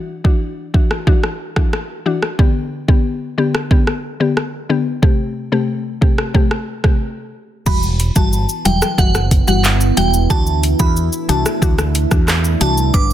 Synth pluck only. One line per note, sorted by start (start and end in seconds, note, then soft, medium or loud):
0.00 0.21 E3 medium
0.00 0.21 D4 medium
0.00 0.21 F#4 loud
0.24 0.70 E3 medium
0.24 0.70 D4 medium
0.24 0.70 F#4 medium
0.74 1.04 E3 medium
0.74 1.04 D4 medium
0.74 1.05 F#4 medium
1.07 1.19 E3 medium
1.07 1.19 D4 medium
1.07 1.19 F#4 loud
1.56 1.68 E3 medium
1.56 1.69 D4 medium
1.56 1.69 F#4 medium
2.06 2.18 E3 medium
2.06 2.18 D4 medium
2.06 2.18 F#4 medium
2.39 2.84 D3 medium
2.39 2.85 B3 medium
2.39 2.85 G4 loud
2.88 3.34 D3 medium
2.88 3.34 B3 medium
2.88 3.34 G4 medium
3.38 3.68 D3 medium
3.38 3.68 B3 medium
3.38 3.68 G4 medium
3.71 3.83 D3 medium
3.71 3.83 B3 medium
3.71 3.83 G4 loud
4.20 4.32 D3 medium
4.20 4.32 B3 medium
4.20 4.33 G4 medium
4.69 4.82 D3 medium
4.69 4.82 B3 medium
4.69 4.82 G4 medium
5.02 5.48 C3 medium
5.02 5.48 A3 medium
5.02 5.48 G4 loud
5.52 5.98 C3 medium
5.52 5.98 A3 medium
5.52 5.98 G4 medium
6.01 6.32 C3 medium
6.01 6.32 A3 medium
6.01 6.32 G4 medium
6.34 6.46 C3 medium
6.34 6.47 A3 medium
6.34 6.47 G4 loud
6.84 6.96 C3 medium
6.84 6.96 A3 medium
6.84 6.96 G4 medium
7.66 8.12 E3 medium
7.66 8.12 G3 medium
7.66 8.12 F#4 loud
8.16 8.61 E3 medium
8.16 8.61 G3 medium
8.16 8.62 F#4 medium
8.65 8.96 E3 medium
8.65 8.96 F#3 medium
8.65 8.96 G3 medium
8.98 9.10 E3 loud
8.98 9.10 G3 medium
8.98 9.11 F#4 loud
9.47 9.60 E3 medium
9.47 9.60 G3 medium
9.47 9.60 F#4 medium
9.97 10.09 E3 medium
9.97 10.09 G3 medium
9.97 10.09 F#4 medium
10.30 10.76 E3 medium
10.30 10.76 D4 medium
10.30 10.76 F#4 loud
10.79 11.25 E3 medium
10.79 11.25 D4 medium
10.79 11.25 F#4 medium
11.29 11.59 E3 medium
11.29 11.59 D4 medium
11.29 11.60 F#4 medium
11.62 11.74 E3 loud
11.62 11.74 D4 medium
11.62 11.74 F#4 loud
12.11 12.23 E3 medium
12.11 12.24 D4 medium
12.11 12.24 F#4 medium
12.61 12.73 E3 medium
12.61 12.73 D4 medium
12.61 12.73 F#4 medium
12.94 13.13 G3 medium
12.94 13.13 D4 medium
12.94 13.13 B4 loud